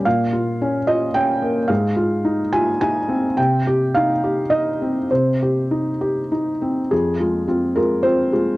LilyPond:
\new Staff \with { instrumentName = "Felt piano" } { \time 3/4 \key f \minor \tempo 4 = 106 << { f''4. ees''8 g''4 | f''4. aes''8 aes''4 | g''4 f''4 ees''4 | c''2 r4 |
aes'4. bes'8 c''4 | } \\ { bes,8 f'8 des'8 f'8 des'8 bes8 | aes,8 f'8 ees'8 f'8 ees'8 c'8 | c8 g'8 ees'8 g'8 ees'8 c'8 | c8 g'8 ees'8 g'8 ees'8 c'8 |
f,8 <aes f'>8 <c' f'>8 <aes f'>8 <c' f'>8 <aes f'>8 | } >> }